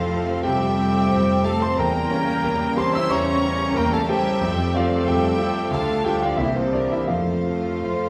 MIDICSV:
0, 0, Header, 1, 12, 480
1, 0, Start_track
1, 0, Key_signature, -1, "major"
1, 0, Tempo, 660066
1, 1287, Time_signature, 4, 2, 24, 8
1, 4637, Tempo, 726392
1, 5770, End_track
2, 0, Start_track
2, 0, Title_t, "Flute"
2, 0, Program_c, 0, 73
2, 0, Note_on_c, 0, 77, 75
2, 153, Note_off_c, 0, 77, 0
2, 321, Note_on_c, 0, 79, 75
2, 1047, Note_on_c, 0, 81, 70
2, 1058, Note_off_c, 0, 79, 0
2, 1175, Note_on_c, 0, 84, 65
2, 1186, Note_off_c, 0, 81, 0
2, 1287, Note_on_c, 0, 82, 80
2, 1298, Note_off_c, 0, 84, 0
2, 2012, Note_on_c, 0, 84, 72
2, 2022, Note_off_c, 0, 82, 0
2, 2139, Note_on_c, 0, 88, 70
2, 2150, Note_off_c, 0, 84, 0
2, 2263, Note_on_c, 0, 85, 81
2, 2274, Note_off_c, 0, 88, 0
2, 2743, Note_on_c, 0, 82, 73
2, 2754, Note_off_c, 0, 85, 0
2, 2854, Note_off_c, 0, 82, 0
2, 2865, Note_on_c, 0, 81, 73
2, 2992, Note_on_c, 0, 79, 75
2, 3002, Note_off_c, 0, 81, 0
2, 3469, Note_on_c, 0, 77, 62
2, 3480, Note_off_c, 0, 79, 0
2, 3709, Note_on_c, 0, 79, 76
2, 3720, Note_off_c, 0, 77, 0
2, 4168, Note_off_c, 0, 79, 0
2, 4174, Note_on_c, 0, 81, 74
2, 4398, Note_on_c, 0, 79, 66
2, 4409, Note_off_c, 0, 81, 0
2, 4516, Note_on_c, 0, 77, 59
2, 4527, Note_off_c, 0, 79, 0
2, 4644, Note_on_c, 0, 76, 58
2, 4654, Note_off_c, 0, 77, 0
2, 4753, Note_off_c, 0, 76, 0
2, 4773, Note_on_c, 0, 72, 52
2, 4895, Note_on_c, 0, 74, 51
2, 4904, Note_off_c, 0, 72, 0
2, 4997, Note_off_c, 0, 74, 0
2, 5012, Note_on_c, 0, 76, 45
2, 5117, Note_on_c, 0, 77, 58
2, 5127, Note_off_c, 0, 76, 0
2, 5770, Note_off_c, 0, 77, 0
2, 5770, End_track
3, 0, Start_track
3, 0, Title_t, "Violin section"
3, 0, Program_c, 1, 48
3, 0, Note_on_c, 1, 77, 71
3, 317, Note_off_c, 1, 77, 0
3, 332, Note_on_c, 1, 79, 79
3, 1038, Note_off_c, 1, 79, 0
3, 1052, Note_on_c, 1, 81, 66
3, 1169, Note_off_c, 1, 81, 0
3, 1179, Note_on_c, 1, 84, 66
3, 1293, Note_off_c, 1, 84, 0
3, 1294, Note_on_c, 1, 82, 68
3, 1999, Note_off_c, 1, 82, 0
3, 2016, Note_on_c, 1, 84, 65
3, 2130, Note_on_c, 1, 88, 71
3, 2131, Note_off_c, 1, 84, 0
3, 2250, Note_off_c, 1, 88, 0
3, 2262, Note_on_c, 1, 85, 82
3, 2733, Note_off_c, 1, 85, 0
3, 2738, Note_on_c, 1, 82, 72
3, 2849, Note_on_c, 1, 81, 69
3, 2851, Note_off_c, 1, 82, 0
3, 2967, Note_off_c, 1, 81, 0
3, 2967, Note_on_c, 1, 79, 75
3, 3446, Note_on_c, 1, 77, 64
3, 3447, Note_off_c, 1, 79, 0
3, 3684, Note_off_c, 1, 77, 0
3, 3685, Note_on_c, 1, 79, 76
3, 4156, Note_off_c, 1, 79, 0
3, 4157, Note_on_c, 1, 81, 74
3, 4392, Note_on_c, 1, 79, 64
3, 4394, Note_off_c, 1, 81, 0
3, 4511, Note_on_c, 1, 77, 53
3, 4513, Note_off_c, 1, 79, 0
3, 4633, Note_off_c, 1, 77, 0
3, 4635, Note_on_c, 1, 76, 59
3, 4749, Note_off_c, 1, 76, 0
3, 4751, Note_on_c, 1, 72, 49
3, 4863, Note_off_c, 1, 72, 0
3, 4866, Note_on_c, 1, 74, 47
3, 4983, Note_off_c, 1, 74, 0
3, 4989, Note_on_c, 1, 76, 50
3, 5105, Note_on_c, 1, 77, 45
3, 5106, Note_off_c, 1, 76, 0
3, 5770, Note_off_c, 1, 77, 0
3, 5770, End_track
4, 0, Start_track
4, 0, Title_t, "Violin section"
4, 0, Program_c, 2, 48
4, 0, Note_on_c, 2, 72, 67
4, 320, Note_off_c, 2, 72, 0
4, 328, Note_on_c, 2, 76, 72
4, 1036, Note_off_c, 2, 76, 0
4, 1051, Note_on_c, 2, 77, 69
4, 1169, Note_off_c, 2, 77, 0
4, 1179, Note_on_c, 2, 81, 63
4, 1293, Note_off_c, 2, 81, 0
4, 1303, Note_on_c, 2, 79, 77
4, 2018, Note_off_c, 2, 79, 0
4, 2020, Note_on_c, 2, 81, 71
4, 2135, Note_off_c, 2, 81, 0
4, 2148, Note_on_c, 2, 84, 77
4, 2259, Note_off_c, 2, 84, 0
4, 2279, Note_on_c, 2, 82, 79
4, 2742, Note_off_c, 2, 82, 0
4, 2749, Note_on_c, 2, 79, 74
4, 2857, Note_off_c, 2, 79, 0
4, 2875, Note_on_c, 2, 77, 65
4, 2980, Note_off_c, 2, 77, 0
4, 2989, Note_on_c, 2, 76, 74
4, 3449, Note_off_c, 2, 76, 0
4, 3461, Note_on_c, 2, 74, 63
4, 3692, Note_off_c, 2, 74, 0
4, 3700, Note_on_c, 2, 76, 72
4, 4163, Note_off_c, 2, 76, 0
4, 4165, Note_on_c, 2, 77, 68
4, 4394, Note_off_c, 2, 77, 0
4, 4411, Note_on_c, 2, 76, 61
4, 4522, Note_off_c, 2, 76, 0
4, 4537, Note_on_c, 2, 74, 56
4, 4647, Note_off_c, 2, 74, 0
4, 4665, Note_on_c, 2, 72, 59
4, 4764, Note_off_c, 2, 72, 0
4, 4765, Note_on_c, 2, 69, 51
4, 4873, Note_off_c, 2, 69, 0
4, 4886, Note_on_c, 2, 70, 50
4, 4993, Note_off_c, 2, 70, 0
4, 5008, Note_on_c, 2, 72, 46
4, 5116, Note_off_c, 2, 72, 0
4, 5130, Note_on_c, 2, 72, 52
4, 5770, Note_off_c, 2, 72, 0
4, 5770, End_track
5, 0, Start_track
5, 0, Title_t, "Grand piano"
5, 0, Program_c, 3, 0
5, 0, Control_c, 3, 64, 127
5, 0, Note_on_c, 3, 41, 65
5, 0, Note_on_c, 3, 60, 57
5, 0, Note_on_c, 3, 64, 58
5, 0, Note_on_c, 3, 65, 52
5, 0, Note_on_c, 3, 72, 50
5, 0, Note_on_c, 3, 76, 70
5, 0, Note_on_c, 3, 77, 68
5, 93, Note_on_c, 3, 69, 55
5, 291, Note_off_c, 3, 77, 0
5, 294, Note_off_c, 3, 65, 0
5, 298, Note_off_c, 3, 72, 0
5, 301, Note_off_c, 3, 41, 0
5, 315, Note_on_c, 3, 79, 75
5, 320, Note_on_c, 3, 67, 57
5, 336, Note_on_c, 3, 48, 51
5, 474, Note_off_c, 3, 69, 0
5, 559, Note_off_c, 3, 60, 0
5, 559, Note_on_c, 3, 60, 46
5, 716, Note_off_c, 3, 48, 0
5, 813, Note_on_c, 3, 72, 53
5, 948, Note_off_c, 3, 60, 0
5, 1014, Note_off_c, 3, 79, 0
5, 1017, Note_off_c, 3, 67, 0
5, 1055, Note_on_c, 3, 81, 73
5, 1058, Note_on_c, 3, 69, 58
5, 1163, Note_off_c, 3, 81, 0
5, 1170, Note_off_c, 3, 72, 0
5, 1178, Note_on_c, 3, 84, 76
5, 1181, Note_on_c, 3, 72, 54
5, 1284, Note_off_c, 3, 84, 0
5, 1286, Note_off_c, 3, 72, 0
5, 1291, Note_on_c, 3, 82, 74
5, 1292, Note_off_c, 3, 69, 0
5, 1299, Note_on_c, 3, 70, 60
5, 1300, Control_c, 3, 64, 0
5, 1302, Note_off_c, 3, 64, 0
5, 1302, Note_on_c, 3, 40, 67
5, 1307, Note_on_c, 3, 79, 64
5, 1308, Note_off_c, 3, 76, 0
5, 1426, Control_c, 3, 64, 127
5, 1534, Note_on_c, 3, 61, 60
5, 1765, Note_off_c, 3, 70, 0
5, 1776, Note_on_c, 3, 70, 54
5, 1917, Note_off_c, 3, 61, 0
5, 1983, Note_off_c, 3, 82, 0
5, 1991, Note_off_c, 3, 79, 0
5, 2015, Note_on_c, 3, 67, 56
5, 2021, Note_on_c, 3, 84, 81
5, 2032, Note_on_c, 3, 72, 64
5, 2127, Note_off_c, 3, 84, 0
5, 2133, Note_off_c, 3, 72, 0
5, 2147, Note_on_c, 3, 88, 72
5, 2153, Note_on_c, 3, 76, 59
5, 2157, Note_off_c, 3, 70, 0
5, 2229, Note_off_c, 3, 40, 0
5, 2247, Note_on_c, 3, 52, 53
5, 2250, Note_off_c, 3, 88, 0
5, 2253, Note_on_c, 3, 85, 90
5, 2254, Note_off_c, 3, 76, 0
5, 2261, Note_on_c, 3, 73, 64
5, 2263, Note_on_c, 3, 82, 66
5, 2396, Note_off_c, 3, 67, 0
5, 2484, Note_on_c, 3, 61, 58
5, 2630, Note_off_c, 3, 52, 0
5, 2699, Note_off_c, 3, 85, 0
5, 2703, Note_off_c, 3, 73, 0
5, 2704, Note_off_c, 3, 82, 0
5, 2720, Note_on_c, 3, 70, 62
5, 2740, Note_on_c, 3, 82, 83
5, 2845, Note_off_c, 3, 82, 0
5, 2859, Note_on_c, 3, 81, 77
5, 2867, Note_off_c, 3, 61, 0
5, 2867, Note_on_c, 3, 69, 58
5, 2964, Note_off_c, 3, 81, 0
5, 2968, Note_off_c, 3, 69, 0
5, 2974, Note_on_c, 3, 79, 76
5, 2977, Note_on_c, 3, 67, 62
5, 2987, Note_on_c, 3, 72, 58
5, 3105, Note_off_c, 3, 70, 0
5, 3206, Note_on_c, 3, 41, 66
5, 3211, Note_off_c, 3, 67, 0
5, 3218, Control_c, 3, 64, 0
5, 3325, Control_c, 3, 64, 127
5, 3422, Note_off_c, 3, 79, 0
5, 3428, Note_off_c, 3, 72, 0
5, 3454, Note_on_c, 3, 60, 59
5, 3466, Note_on_c, 3, 77, 74
5, 3470, Note_on_c, 3, 65, 49
5, 3678, Note_off_c, 3, 77, 0
5, 3680, Note_off_c, 3, 65, 0
5, 3682, Note_on_c, 3, 69, 57
5, 3694, Note_on_c, 3, 79, 78
5, 3701, Note_on_c, 3, 67, 58
5, 3829, Note_off_c, 3, 60, 0
5, 3912, Note_on_c, 3, 65, 57
5, 4060, Note_off_c, 3, 69, 0
5, 4128, Note_off_c, 3, 41, 0
5, 4131, Note_off_c, 3, 79, 0
5, 4134, Note_off_c, 3, 67, 0
5, 4151, Note_on_c, 3, 38, 63
5, 4152, Note_off_c, 3, 65, 0
5, 4169, Control_c, 3, 64, 0
5, 4171, Note_on_c, 3, 81, 82
5, 4181, Note_on_c, 3, 69, 56
5, 4181, Note_on_c, 3, 77, 60
5, 4271, Control_c, 3, 64, 127
5, 4385, Note_off_c, 3, 81, 0
5, 4390, Note_off_c, 3, 69, 0
5, 4390, Note_off_c, 3, 77, 0
5, 4395, Note_on_c, 3, 79, 72
5, 4400, Note_on_c, 3, 65, 47
5, 4403, Note_on_c, 3, 69, 49
5, 4404, Note_on_c, 3, 67, 60
5, 4506, Note_off_c, 3, 79, 0
5, 4511, Note_off_c, 3, 67, 0
5, 4522, Note_off_c, 3, 65, 0
5, 4526, Note_on_c, 3, 77, 57
5, 4533, Note_on_c, 3, 65, 44
5, 4617, Note_off_c, 3, 69, 0
5, 4620, Note_off_c, 3, 38, 0
5, 4628, Note_on_c, 3, 76, 69
5, 4634, Note_off_c, 3, 77, 0
5, 4637, Note_on_c, 3, 36, 65
5, 4638, Note_off_c, 3, 65, 0
5, 4643, Note_on_c, 3, 64, 48
5, 4648, Control_c, 3, 64, 0
5, 4738, Note_off_c, 3, 76, 0
5, 4745, Note_off_c, 3, 64, 0
5, 4755, Note_on_c, 3, 72, 53
5, 4760, Note_on_c, 3, 60, 40
5, 4775, Control_c, 3, 64, 127
5, 4860, Note_off_c, 3, 72, 0
5, 4862, Note_off_c, 3, 60, 0
5, 4868, Note_on_c, 3, 74, 61
5, 4877, Note_on_c, 3, 72, 46
5, 4878, Note_on_c, 3, 67, 41
5, 4880, Note_on_c, 3, 62, 44
5, 4976, Note_off_c, 3, 74, 0
5, 4982, Note_off_c, 3, 62, 0
5, 4993, Note_on_c, 3, 76, 52
5, 4996, Note_on_c, 3, 64, 41
5, 5086, Note_off_c, 3, 67, 0
5, 5086, Note_off_c, 3, 72, 0
5, 5089, Note_off_c, 3, 36, 0
5, 5098, Note_on_c, 3, 77, 49
5, 5100, Note_off_c, 3, 76, 0
5, 5102, Note_off_c, 3, 64, 0
5, 5103, Note_on_c, 3, 65, 44
5, 5104, Note_on_c, 3, 72, 41
5, 5107, Note_on_c, 3, 41, 48
5, 5115, Control_c, 3, 64, 0
5, 5238, Control_c, 3, 64, 127
5, 5355, Note_on_c, 3, 57, 41
5, 5591, Note_off_c, 3, 72, 0
5, 5601, Note_on_c, 3, 72, 36
5, 5744, Note_off_c, 3, 57, 0
5, 5770, Note_off_c, 3, 41, 0
5, 5770, Note_off_c, 3, 65, 0
5, 5770, Note_off_c, 3, 72, 0
5, 5770, Note_off_c, 3, 77, 0
5, 5770, End_track
6, 0, Start_track
6, 0, Title_t, "Trumpet section"
6, 0, Program_c, 4, 61
6, 0, Note_on_c, 4, 65, 67
6, 321, Note_off_c, 4, 65, 0
6, 325, Note_on_c, 4, 67, 68
6, 1034, Note_off_c, 4, 67, 0
6, 1051, Note_on_c, 4, 69, 68
6, 1168, Note_on_c, 4, 72, 66
6, 1169, Note_off_c, 4, 69, 0
6, 1287, Note_off_c, 4, 72, 0
6, 1290, Note_on_c, 4, 70, 81
6, 1997, Note_off_c, 4, 70, 0
6, 2007, Note_on_c, 4, 72, 79
6, 2128, Note_off_c, 4, 72, 0
6, 2132, Note_on_c, 4, 76, 70
6, 2251, Note_off_c, 4, 76, 0
6, 2252, Note_on_c, 4, 73, 76
6, 2727, Note_on_c, 4, 70, 76
6, 2728, Note_off_c, 4, 73, 0
6, 2844, Note_on_c, 4, 69, 63
6, 2846, Note_off_c, 4, 70, 0
6, 2962, Note_off_c, 4, 69, 0
6, 2967, Note_on_c, 4, 67, 77
6, 3447, Note_off_c, 4, 67, 0
6, 3452, Note_on_c, 4, 65, 65
6, 3687, Note_off_c, 4, 65, 0
6, 3692, Note_on_c, 4, 67, 70
6, 4159, Note_off_c, 4, 67, 0
6, 4160, Note_on_c, 4, 69, 74
6, 4396, Note_off_c, 4, 69, 0
6, 4398, Note_on_c, 4, 67, 65
6, 4516, Note_off_c, 4, 67, 0
6, 4518, Note_on_c, 4, 65, 58
6, 4638, Note_off_c, 4, 65, 0
6, 4640, Note_on_c, 4, 64, 60
6, 4747, Note_on_c, 4, 60, 47
6, 4751, Note_off_c, 4, 64, 0
6, 4863, Note_on_c, 4, 62, 46
6, 4864, Note_off_c, 4, 60, 0
6, 4981, Note_off_c, 4, 62, 0
6, 4983, Note_on_c, 4, 64, 47
6, 5103, Note_off_c, 4, 64, 0
6, 5105, Note_on_c, 4, 65, 54
6, 5770, Note_off_c, 4, 65, 0
6, 5770, End_track
7, 0, Start_track
7, 0, Title_t, "Cor anglais"
7, 0, Program_c, 5, 69
7, 5600, Note_on_c, 5, 65, 43
7, 5770, Note_off_c, 5, 65, 0
7, 5770, End_track
8, 0, Start_track
8, 0, Title_t, "Viola section"
8, 0, Program_c, 6, 48
8, 80, Note_on_c, 6, 60, 47
8, 81, Note_on_c, 6, 69, 51
8, 555, Note_off_c, 6, 60, 0
8, 555, Note_off_c, 6, 69, 0
8, 573, Note_on_c, 6, 60, 46
8, 574, Note_on_c, 6, 69, 51
8, 1042, Note_off_c, 6, 60, 0
8, 1042, Note_off_c, 6, 69, 0
8, 1051, Note_on_c, 6, 60, 55
8, 1054, Note_on_c, 6, 69, 48
8, 1284, Note_off_c, 6, 60, 0
8, 1286, Note_off_c, 6, 69, 0
8, 1532, Note_on_c, 6, 61, 54
8, 1533, Note_on_c, 6, 67, 49
8, 2002, Note_off_c, 6, 61, 0
8, 2003, Note_off_c, 6, 67, 0
8, 2021, Note_on_c, 6, 61, 54
8, 2022, Note_on_c, 6, 67, 52
8, 2485, Note_off_c, 6, 61, 0
8, 2485, Note_off_c, 6, 67, 0
8, 2495, Note_on_c, 6, 61, 53
8, 2499, Note_on_c, 6, 67, 52
8, 2959, Note_off_c, 6, 61, 0
8, 2961, Note_off_c, 6, 67, 0
8, 2972, Note_on_c, 6, 61, 54
8, 2976, Note_on_c, 6, 67, 60
8, 3204, Note_off_c, 6, 61, 0
8, 3206, Note_off_c, 6, 67, 0
8, 3210, Note_on_c, 6, 69, 59
8, 3211, Note_on_c, 6, 60, 58
8, 3444, Note_off_c, 6, 60, 0
8, 3444, Note_off_c, 6, 69, 0
8, 3451, Note_on_c, 6, 60, 52
8, 3454, Note_on_c, 6, 69, 57
8, 3913, Note_off_c, 6, 60, 0
8, 3914, Note_off_c, 6, 69, 0
8, 3924, Note_on_c, 6, 60, 49
8, 3926, Note_on_c, 6, 69, 49
8, 4153, Note_off_c, 6, 60, 0
8, 4154, Note_off_c, 6, 69, 0
8, 4155, Note_on_c, 6, 65, 51
8, 4159, Note_on_c, 6, 62, 50
8, 4388, Note_off_c, 6, 65, 0
8, 4390, Note_off_c, 6, 62, 0
8, 4402, Note_on_c, 6, 62, 48
8, 4404, Note_on_c, 6, 65, 46
8, 4636, Note_off_c, 6, 62, 0
8, 4637, Note_off_c, 6, 65, 0
8, 4645, Note_on_c, 6, 67, 44
8, 4647, Note_on_c, 6, 58, 44
8, 4859, Note_off_c, 6, 58, 0
8, 4861, Note_off_c, 6, 67, 0
8, 4867, Note_on_c, 6, 58, 38
8, 4869, Note_on_c, 6, 67, 40
8, 5099, Note_off_c, 6, 58, 0
8, 5100, Note_off_c, 6, 67, 0
8, 5349, Note_on_c, 6, 57, 38
8, 5350, Note_on_c, 6, 65, 35
8, 5770, Note_off_c, 6, 57, 0
8, 5770, Note_off_c, 6, 65, 0
8, 5770, End_track
9, 0, Start_track
9, 0, Title_t, "Cello section"
9, 0, Program_c, 7, 48
9, 0, Note_on_c, 7, 53, 68
9, 315, Note_off_c, 7, 53, 0
9, 325, Note_on_c, 7, 55, 69
9, 1034, Note_off_c, 7, 55, 0
9, 1053, Note_on_c, 7, 57, 66
9, 1170, Note_off_c, 7, 57, 0
9, 1172, Note_on_c, 7, 60, 66
9, 1289, Note_off_c, 7, 60, 0
9, 1298, Note_on_c, 7, 58, 73
9, 2001, Note_off_c, 7, 58, 0
9, 2019, Note_on_c, 7, 60, 67
9, 2134, Note_off_c, 7, 60, 0
9, 2138, Note_on_c, 7, 64, 76
9, 2254, Note_off_c, 7, 64, 0
9, 2255, Note_on_c, 7, 61, 83
9, 2729, Note_off_c, 7, 61, 0
9, 2735, Note_on_c, 7, 58, 78
9, 2850, Note_off_c, 7, 58, 0
9, 2858, Note_on_c, 7, 57, 68
9, 2971, Note_off_c, 7, 57, 0
9, 2980, Note_on_c, 7, 55, 76
9, 3453, Note_off_c, 7, 55, 0
9, 3457, Note_on_c, 7, 53, 62
9, 3689, Note_off_c, 7, 53, 0
9, 3689, Note_on_c, 7, 55, 66
9, 4148, Note_off_c, 7, 55, 0
9, 4167, Note_on_c, 7, 57, 65
9, 4399, Note_off_c, 7, 57, 0
9, 4404, Note_on_c, 7, 55, 61
9, 4519, Note_off_c, 7, 55, 0
9, 4523, Note_on_c, 7, 53, 53
9, 4638, Note_off_c, 7, 53, 0
9, 4644, Note_on_c, 7, 52, 60
9, 4754, Note_off_c, 7, 52, 0
9, 4758, Note_on_c, 7, 48, 54
9, 4869, Note_off_c, 7, 48, 0
9, 4877, Note_on_c, 7, 50, 54
9, 4986, Note_off_c, 7, 50, 0
9, 4991, Note_on_c, 7, 52, 49
9, 5107, Note_off_c, 7, 52, 0
9, 5107, Note_on_c, 7, 53, 52
9, 5770, Note_off_c, 7, 53, 0
9, 5770, End_track
10, 0, Start_track
10, 0, Title_t, "French horn section"
10, 0, Program_c, 8, 60
10, 0, Note_on_c, 8, 53, 69
10, 334, Note_off_c, 8, 53, 0
10, 350, Note_on_c, 8, 55, 79
10, 1057, Note_on_c, 8, 57, 65
10, 1061, Note_off_c, 8, 55, 0
10, 1172, Note_off_c, 8, 57, 0
10, 1189, Note_on_c, 8, 60, 69
10, 1296, Note_off_c, 8, 60, 0
10, 1310, Note_on_c, 8, 58, 74
10, 2019, Note_on_c, 8, 60, 72
10, 2021, Note_off_c, 8, 58, 0
10, 2135, Note_off_c, 8, 60, 0
10, 2146, Note_on_c, 8, 64, 77
10, 2258, Note_off_c, 8, 64, 0
10, 2279, Note_on_c, 8, 61, 79
10, 2731, Note_on_c, 8, 58, 75
10, 2741, Note_off_c, 8, 61, 0
10, 2848, Note_off_c, 8, 58, 0
10, 2866, Note_on_c, 8, 57, 69
10, 2975, Note_off_c, 8, 57, 0
10, 2980, Note_on_c, 8, 55, 82
10, 3444, Note_off_c, 8, 55, 0
10, 3467, Note_on_c, 8, 53, 65
10, 3695, Note_off_c, 8, 53, 0
10, 3711, Note_on_c, 8, 55, 75
10, 4169, Note_off_c, 8, 55, 0
10, 4183, Note_on_c, 8, 57, 65
10, 4407, Note_off_c, 8, 57, 0
10, 4422, Note_on_c, 8, 55, 70
10, 4526, Note_off_c, 8, 55, 0
10, 4558, Note_on_c, 8, 53, 52
10, 4655, Note_off_c, 8, 53, 0
10, 4679, Note_on_c, 8, 52, 61
10, 4771, Note_off_c, 8, 52, 0
10, 4796, Note_on_c, 8, 48, 54
10, 4888, Note_off_c, 8, 48, 0
10, 4892, Note_on_c, 8, 50, 53
10, 4994, Note_off_c, 8, 50, 0
10, 5016, Note_on_c, 8, 52, 49
10, 5120, Note_off_c, 8, 52, 0
10, 5129, Note_on_c, 8, 53, 52
10, 5770, Note_off_c, 8, 53, 0
10, 5770, End_track
11, 0, Start_track
11, 0, Title_t, "Trombone section"
11, 0, Program_c, 10, 61
11, 0, Note_on_c, 10, 48, 63
11, 0, Note_on_c, 10, 57, 68
11, 1264, Note_off_c, 10, 48, 0
11, 1264, Note_off_c, 10, 57, 0
11, 1292, Note_on_c, 10, 49, 65
11, 1295, Note_on_c, 10, 55, 67
11, 3180, Note_off_c, 10, 55, 0
11, 3208, Note_off_c, 10, 49, 0
11, 3219, Note_on_c, 10, 57, 67
11, 3227, Note_on_c, 10, 48, 73
11, 4166, Note_off_c, 10, 48, 0
11, 4169, Note_on_c, 10, 53, 57
11, 4522, Note_off_c, 10, 53, 0
11, 4522, Note_off_c, 10, 57, 0
11, 4645, Note_on_c, 10, 55, 54
11, 4648, Note_on_c, 10, 58, 52
11, 5098, Note_off_c, 10, 55, 0
11, 5109, Note_off_c, 10, 58, 0
11, 5120, Note_on_c, 10, 57, 45
11, 5122, Note_on_c, 10, 53, 53
11, 5770, Note_off_c, 10, 53, 0
11, 5770, Note_off_c, 10, 57, 0
11, 5770, End_track
12, 0, Start_track
12, 0, Title_t, "Double bass section"
12, 0, Program_c, 11, 48
12, 0, Note_on_c, 11, 41, 65
12, 269, Note_off_c, 11, 41, 0
12, 328, Note_on_c, 11, 41, 65
12, 752, Note_off_c, 11, 41, 0
12, 812, Note_on_c, 11, 41, 63
12, 1234, Note_off_c, 11, 41, 0
12, 1293, Note_on_c, 11, 40, 69
12, 1715, Note_off_c, 11, 40, 0
12, 1780, Note_on_c, 11, 40, 65
12, 2199, Note_off_c, 11, 40, 0
12, 2253, Note_on_c, 11, 40, 67
12, 2672, Note_off_c, 11, 40, 0
12, 2729, Note_on_c, 11, 40, 70
12, 3150, Note_off_c, 11, 40, 0
12, 3214, Note_on_c, 11, 41, 72
12, 3633, Note_off_c, 11, 41, 0
12, 3686, Note_on_c, 11, 41, 73
12, 4101, Note_off_c, 11, 41, 0
12, 4163, Note_on_c, 11, 38, 66
12, 4582, Note_off_c, 11, 38, 0
12, 4641, Note_on_c, 11, 36, 58
12, 5048, Note_off_c, 11, 36, 0
12, 5102, Note_on_c, 11, 41, 53
12, 5537, Note_off_c, 11, 41, 0
12, 5599, Note_on_c, 11, 41, 44
12, 5770, Note_off_c, 11, 41, 0
12, 5770, End_track
0, 0, End_of_file